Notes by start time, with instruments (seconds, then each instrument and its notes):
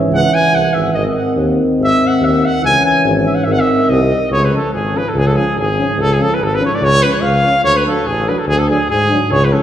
Already playing: euphonium E3 C#4
0.09 tuba C#2
0.14 trumpet F#5
0.34 trumpet G#5
0.52 tuba C2, trumpet F#5
0.72 tuba G#1, trumpet E5
0.94 tuba G#1, euphonium D#3 C4, trumpet D#5
1.16 trumpet F#5
1.36 tuba D#2
1.78 tuba G#1
1.84 trumpet E5
2.07 trumpet F#5
2.21 tuba D#2
2.25 trumpet E5
2.46 trumpet F#5
2.62 tuba C#2, euphonium E3 C#4, trumpet G#5
2.85 trumpet G#5
3.04 tuba G#1
3.26 trumpet E5
3.35 trumpet F#5
3.44 tuba G#1, euphonium D#3 C4, trumpet E5
3.52 trumpet F#5
3.60 trumpet E5
3.89 tuba C2, trumpet D#5
4.30 tuba C#2, trumpet C#5
4.45 trumpet B4
4.52 euphonium F3 C#4, trumpet A4
4.73 tuba G#1, trumpet G#4
4.93 euphonium F3 C#4
4.97 trumpet B4
5.09 trumpet A4
5.14 tuba C#2, trumpet G#4
5.27 trumpet A4
5.34 euphonium F3 C#4, trumpet G#4
5.56 tuba G#1, trumpet G#4
5.77 euphonium F3 C#4
5.98 tuba C#2, trumpet A4
6.13 trumpet G#4
6.18 euphonium F3 C#4
6.22 trumpet A4
6.34 trumpet B4
6.39 tuba G#1
6.44 trumpet A4
6.55 euphonium F3, trumpet B4
6.60 euphonium C#4
6.65 trumpet C#5
6.75 trumpet D5
6.81 tuba C#2, trumpet C#5
7.03 euphonium F3 C#4, trumpet B4
7.14 trumpet C#5
7.21 tuba C#2, trumpet F5
7.45 euphonium F3 C#4
7.63 tuba D2, trumpet C#5
7.77 trumpet B4
7.86 euphonium F#3 D4, trumpet A4
8.05 tuba A1, trumpet G#4
8.27 euphonium F#3 D4, trumpet B4
8.39 trumpet A4
8.47 tuba D2, trumpet G#4
8.59 trumpet A4
8.69 euphonium F#3 D4, trumpet G#4
8.90 tuba G#2, trumpet G#4
9.10 euphonium F#3 D4
9.31 tuba C#2, trumpet C#5
9.44 trumpet B4
9.53 euphonium F3 C#4, trumpet A4